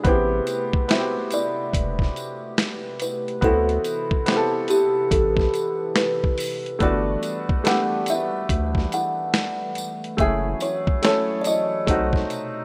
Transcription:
0.03 A1 C3 A3 B3 C4 E4 G4 B4, kick, closed hi-hat
0.08 G4
0.47 closed hi-hat, tambourine
0.73 kick
0.88 B3 C4 E4 F#4 E5, finger snap, snare, closed hi-hat
0.99 G4
1.31 D5, closed hi-hat, tambourine
1.73 E1, kick, closed hi-hat
1.99 kick, snare
2.16 closed hi-hat, tambourine
2.58 finger snap, snare, closed hi-hat
3.00 B4, closed hi-hat, tambourine
3.28 closed hi-hat
3.41 D2 C3 E3 B3 C4 E4 A4, kick, closed hi-hat
3.45 F#4
3.69 closed hi-hat
3.84 closed hi-hat, tambourine
4.11 kick
4.26 B3 C4 E4, finger snap, snare, closed hi-hat
4.30 G4
4.36 A4
4.68 G4, closed hi-hat, tambourine
5.11 A1 A4, kick, closed hi-hat
5.37 kick, snare
5.54 closed hi-hat, tambourine
5.96 B4, finger snap, snare, closed hi-hat
6.24 kick
6.38 open hi-hat, tambourine
6.66 closed hi-hat
6.79 G1 G3 A3 B3 D4 D5, kick, closed hi-hat
6.83 F#4
7.23 closed hi-hat, tambourine
7.49 kick
7.64 A3 B3 D4 F#5, finger snap, snare, closed hi-hat
7.68 G4
8.06 E5, closed hi-hat, tambourine
8.49 D2, kick, closed hi-hat
8.75 kick, snare
8.92 F#5, closed hi-hat, tambourine
9.34 finger snap, snare, closed hi-hat
9.75 closed hi-hat, tambourine
10.04 closed hi-hat
10.17 F#1 E3 F#3 A3 C#4 E4 F#4 G#4 E5, kick, closed hi-hat
10.60 C#5, closed hi-hat, tambourine
10.87 kick
11.02 A3 C#4 E4 C#5, finger snap, snare, closed hi-hat
11.06 A4
11.42 D5, closed hi-hat, tambourine
11.47 D#5
11.87 B1 B2 C3 A3 C4 D#4, kick, closed hi-hat
11.91 F#4
12.13 kick, snare
12.30 closed hi-hat, tambourine

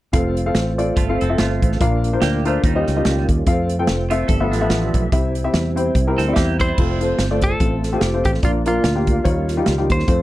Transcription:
0.13 F1 A3 C4 F4 A4 F5, kick, closed hi-hat
0.37 closed hi-hat
0.46 C4 F4 A4 F5
0.55 A1, snare, closed hi-hat
0.78 C4 F4 A4 D5, closed hi-hat
0.97 G1 A3 F4, kick, closed hi-hat
1.09 C4 F4 A4 F5
1.21 F1 C4 A4, closed hi-hat
1.30 C4 F4 A4 E5
1.38 G1 A3 F4, snare, closed hi-hat
1.62 A1, kick, closed hi-hat
1.72 snare
1.79 A#1 A#2 A#3 D4 F4 A#4 F5, kick, closed hi-hat
2.04 closed hi-hat
2.13 D4 F4 A#4 C5
2.22 D2 A#3 G4, snare, closed hi-hat
2.45 A3 D4 F4 A#4 C5, closed hi-hat
2.63 D#2 D#3 G3 C#4 D#4, kick, closed hi-hat
2.75 C#4 F4 G4 D#5
2.87 C#2, snare, closed hi-hat
2.96 C#4 F4 G4 D#5
3.05 C#2, snare, closed hi-hat
3.29 D#2, kick, closed hi-hat
3.45 F2 A3 C4 F4 A4 F5, kick, closed hi-hat
3.70 closed hi-hat
3.79 C4 F4 A4 G5
3.87 F1, snare, closed hi-hat
4.10 A3 C4 F4 A4 E5, closed hi-hat
4.28 G1 G2 F3 B3 G4 A4 E5, kick, closed hi-hat
4.40 B3 F4 A4 E5
4.52 A1 F3 D4, snare, closed hi-hat
4.61 B3 F4 A4 E5
4.70 A1, snare, closed hi-hat
4.94 B1, kick, closed hi-hat
5.12 C2 C3 G3 C4 E4 G4 E5, kick, closed hi-hat
5.35 closed hi-hat
5.44 C4 E4 G4 E5
5.54 E2, snare, closed hi-hat
5.76 C4 E4 G4 C5, closed hi-hat
5.95 C2, kick, closed hi-hat
6.07 C4 E4 G4 A#4
6.18 D2 C4 A4, snare, closed hi-hat
6.28 C4 E4 G4 D5
6.33 E2 A#3 G4 E5, kick, snare, closed hi-hat
6.59 G3 E4 C5, kick, closed hi-hat
6.78 F1 A3 C4 F4 C5, kick, crash
7.01 A3 C4 F4 C5, closed hi-hat
7.19 G1, snare, closed hi-hat
7.31 A3 C4 F4 D5
7.41 A4, kick, closed hi-hat
7.60 A1 A3 C4 F4 A4, kick, closed hi-hat
7.83 snare, closed hi-hat
7.92 A3 C4 F4 G4
8.01 F1 G4, snare, closed hi-hat
8.13 A3 C4 F4 C5
8.25 A1 G4, kick, closed hi-hat
8.34 snare
8.43 A#1 A#2 A#3 D4 F4 D5, kick, closed hi-hat
8.66 A#3 D4 F4 A#4, closed hi-hat
8.84 D2, snare, closed hi-hat
8.95 A#3 D4 F4 G4
9.07 kick, closed hi-hat
9.24 D#2 D#3 G3 C#4 D#4 F4 C#5, kick, closed hi-hat
9.48 snare, closed hi-hat
9.57 G3 D#4 F4 G4
9.66 C#2, snare, closed hi-hat
9.78 G3 D#4 F4 G4
9.90 D#2 C5, kick, closed hi-hat
9.99 snare
10.07 F2 A3 C4 F4 C5, kick, closed hi-hat

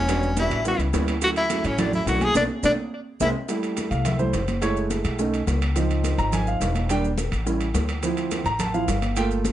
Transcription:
Already playing: E1 C#4 C#5
0.08 G3 B3 D4 F#4, high bongo, high conga, high timbale, maracas
0.22 high bongo, high conga, maracas
0.37 G3 B3 D4 E4 F#4 E5, high bongo, high conga, high timbale, maracas
0.50 A1, high conga, high timbale, maracas
0.65 G3 B3 C#4 E4 F#4 F#5, high bongo, high conga, maracas
0.79 C#2, high bongo, high conga, high timbale, maracas
0.93 D2 G3 B3 C#4 E4, high bongo, low bongo, high conga, high timbale, low timbale, maracas
1.08 high bongo, high timbale, maracas
1.22 F#3 A3 C#4 E4 F#4 F#5, high bongo, high conga, high timbale, maracas
1.36 E4 E5, high conga, high timbale, maracas
1.50 F#3 A3 C#4 E4, high bongo, high conga, high timbale, maracas
1.64 A1 C#4 C#5, high bongo, high conga, high timbale, maracas
1.78 F#3 A3 C#4 D4 E4 D5, high bongo, high conga, low conga, high timbale, maracas
1.93 E4 E5, high bongo, high conga, low conga, maracas
2.06 B1 F#3 A3 C#4 E4 F#4 F#5, high bongo, low bongo, high timbale, maracas
2.21 G#4 G#5, high bongo, high conga, high timbale, maracas
2.35 B1 A3 B3 D4 D5, low bongo, high conga, high timbale, maracas
2.63 B1 A3 B3 D4 D5, low bongo, high conga, high timbale, maracas
3.20 C2 G#3 A#3 C4 E4 E5, low bongo, high conga, high timbale, maracas
3.49 G3 A3 E4, high bongo, high conga, high timbale, maracas
3.63 high conga, high timbale, maracas
3.77 high bongo, high conga, high timbale, maracas
3.91 C2 F5, high bongo, high conga, high timbale, maracas
4.05 E5, high bongo, high conga, low conga, high timbale, maracas
4.19 G3 A3 E4 C5, high bongo, high conga, low conga, maracas
4.33 F#1, high bongo, low bongo, high timbale, low timbale, maracas
4.48 high bongo, high conga, high timbale, maracas
4.62 G#3 A3 E4 C#5, high bongo, high timbale, maracas
4.76 high bongo, maracas
4.90 high bongo, high conga, high timbale, maracas
5.05 B1, high conga, high timbale, maracas
5.19 A3 C#4 D#4, high bongo, high conga, maracas
5.33 high bongo, high conga, high timbale, maracas
5.47 C#2, high bongo, low bongo, high conga, high timbale, low timbale, maracas
5.62 high bongo, high timbale, maracas
5.76 F3 C4 D#4, high bongo, high conga, high timbale, maracas
5.90 high conga, high timbale, maracas
6.04 high bongo, high conga, high timbale, maracas
6.18 G#1 A#5, high bongo, high conga, high timbale, maracas
6.33 G#5, high bongo, high conga, low conga, high timbale, maracas
6.47 F5, high bongo, high conga, maracas
6.61 E1, high bongo, low bongo, high conga, high timbale, low timbale, maracas
6.75 high bongo, high conga, high timbale, maracas
6.89 G3 A#3 D4 G5, high bongo, high conga, high timbale, maracas
7.04 high bongo, maracas
7.18 high bongo, high conga, high timbale, maracas
7.32 A1, high conga, high timbale, maracas
7.46 G3 C#4 E4, high bongo, high conga, maracas
7.61 high bongo, high conga, high timbale, maracas
7.74 D2, high bongo, low bongo, high conga, high timbale, low timbale, maracas
7.88 high bongo, high timbale, maracas
8.03 F3 C4 E4, high bongo, high conga, high timbale, maracas
8.17 high conga, high timbale, maracas
8.31 high bongo, high conga, high timbale, maracas
8.44 A1 A#5, high bongo, high conga, high timbale, maracas
8.59 A5, high bongo, high conga, low conga, high timbale, maracas
8.74 F3 C4 E4 F5, high bongo, high conga, maracas
8.88 G1, high bongo, low bongo, high conga, high timbale, low timbale, maracas
9.02 high bongo, high conga, high timbale, maracas
9.16 A3 A#3 F4 G5, high bongo, high conga, high timbale, maracas
9.31 high bongo, high conga, maracas
9.45 high bongo, high conga, high timbale, maracas

